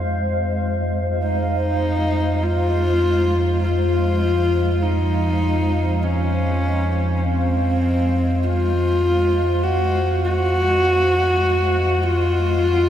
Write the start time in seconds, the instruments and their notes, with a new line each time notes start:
Already playing: synth drone F2, ambient pad G#3 C5 F5
1.23 horsehead fiddle D#4
2.42 horsehead fiddle F4
3.63 horsehead fiddle F4
4.82 horsehead fiddle D#4
6.04 horsehead fiddle C#4
7.17 horsehead fiddle C#4
7.24 horsehead fiddle C4
8.44 horsehead fiddle F4
9.63 ambient pad G#3, horsehead fiddle F#4
10.24 horsehead fiddle F#4
11.76 ambient pad D#5
12.03 horsehead fiddle F4